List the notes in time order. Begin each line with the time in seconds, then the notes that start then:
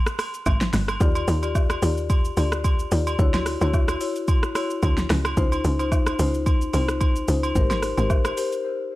0.06 cross-stick, shaker
0.19 cross-stick, open hi-hat, high agogo, shaker
0.34 shaker
0.46 G#1, kick, high agogo, low woodblock, shaker
0.61 snare, shaker
0.73 G1, cross-stick, snare, open hi-hat, shaker
0.88 cross-stick, high agogo, shaker
1.00 D#2 F4 G4 D5, kick, shaker
1.15 high agogo, shaker
1.28 D#2, open hi-hat, shaker
1.42 F4 G4 D5, high agogo, shaker
1.55 kick, low woodblock, shaker
1.70 cross-stick, high agogo, shaker
1.82 D#2 F4 G4 D5, open hi-hat, shaker
1.97 shaker
2.10 kick, high agogo, shaker
2.25 shaker
2.37 D2 F4 G4 D5, open hi-hat, high agogo, shaker
2.52 cross-stick, shaker
2.64 kick, high agogo, shaker
2.79 shaker
2.91 D#2 F4 G4 D5, open hi-hat, shaker
3.07 high agogo, shaker
3.19 D2 E4 F#4 C#5, kick, shaker
3.34 snare, high agogo, shaker
3.46 cross-stick, open hi-hat, shaker
3.61 D2 E4 F#4 C#5, high agogo, shaker
3.74 kick, low woodblock, shaker
3.88 cross-stick, high agogo, shaker
4.00 E4 F#4 C#5, open hi-hat, shaker
4.16 shaker
4.28 kick, high agogo, shaker
4.43 cross-stick, shaker
4.55 E4 F#4 C#5, cross-stick, open hi-hat, high agogo, shaker
4.70 shaker
4.83 D2, kick, high agogo, shaker
4.98 snare, shaker
5.10 C#2, cross-stick, snare, open hi-hat, shaker
5.25 cross-stick, high agogo, shaker
5.37 C#2 D#4 F4 C5, kick, shaker
5.52 high agogo, shaker
5.64 C#2, open hi-hat, shaker
5.79 D#4 F4 C5, high agogo, shaker
5.92 kick, low woodblock, shaker
6.07 cross-stick, high agogo, shaker
6.19 C#2 D#4 F4 C5, open hi-hat, shaker
6.34 shaker
6.46 kick, high agogo, shaker
6.61 shaker
6.73 C2 D#4 F4 C5, open hi-hat, high agogo, shaker
6.88 cross-stick, shaker
7.01 kick, high agogo, shaker
7.16 shaker
7.28 C#2 D#4 F4 C5, open hi-hat, shaker
7.43 high agogo, shaker
7.55 G#1 G4 A#4 C5, kick, shaker
7.70 snare, high agogo, shaker
7.82 cross-stick, open hi-hat, shaker
7.97 G#1 G4 A#4 C5, high agogo, shaker
8.10 kick, low woodblock, shaker
8.25 cross-stick, high agogo, shaker
8.37 G4 A#4 C5, open hi-hat, shaker
8.52 shaker